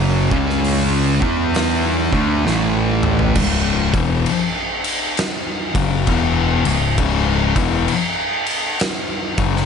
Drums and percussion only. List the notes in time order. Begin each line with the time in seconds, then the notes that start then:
0.31 kick
0.50 snare
0.64 open hi-hat
1.22 kick
1.54 snare, open hi-hat
2.13 kick
2.47 snare
3.03 mid tom
3.19 floor tom
3.35 kick, crash
3.94 kick, ride
4.26 ride
4.84 ride
5.17 snare, ride
5.75 kick, ride
6.07 kick, ride
6.65 ride
6.98 kick, ride
7.56 kick, ride
7.88 ride
8.46 ride
8.80 snare, ride
9.38 kick, ride
9.56 snare